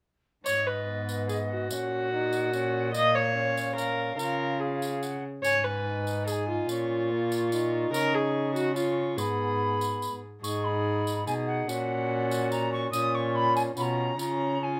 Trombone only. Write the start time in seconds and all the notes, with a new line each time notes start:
0.88 B3
1.71 C#4
2.12 D#4
2.53 C#4
2.94 A#3
3.35 C#4
4.19 F4
5.86 D#4
6.69 C#4
7.11 A#3
7.52 D#4
8.75 C#4
9.18 B3
10.43 D#4
11.27 D#4
11.68 C#4
12.93 C#4
13.76 C#4
14.18 C#4
14.61 C#4